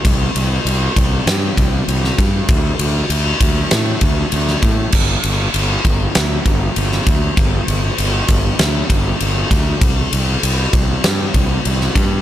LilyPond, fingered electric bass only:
\new Staff \with { instrumentName = "Fingered electric bass" } { \clef bass \time 4/4 \key c \lydian \tempo 4 = 98 c,8 c,8 c,8 c,8 g,8 c,8 c,8 g,8 | d,8 d,8 d,8 d,8 a,8 d,8 d,8 a,8 | g,,8 g,,8 g,,8 g,,8 d,8 g,,8 g,,8 d,8 | g,,8 g,,8 g,,8 g,,8 d,8 g,,8 g,,8 d,8 |
c,8 c,8 c,8 c,8 g,8 c,8 c,8 g,8 | }